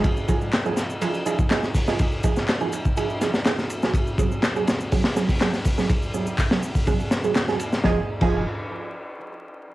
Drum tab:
CC |----------------|----------------|----------------|----------------|
RD |x-x-x-x-x-x-x---|x-x-x-x-x-x-x-x-|x-x-x-x--x--x---|x----x--x-x-x-x-|
HH |--------------o-|----------------|--------o--o--o-|----o--o--------|
SH |xxxxxxxxxxxxxxxx|xxxxxxxxxxxxxxxx|xxxxxxxxxxxxxxxx|xxxxxxxxxxxxxxxx|
CP |----x-------x---|----x-------x---|----x-------x---|----x-------x---|
SD |----o-o-----oo-o|---oo-----oooo-o|----o-o--oo-oo-o|-----o----o-oo-o|
BD |o-o--------o--o-|o-o----o--------|o-o-----o--o--o-|o---o--oo-------|

CC |---x------------|
RD |----------------|
HH |----------------|
SH |----------------|
CP |----------------|
SD |o---------------|
BD |o--o------------|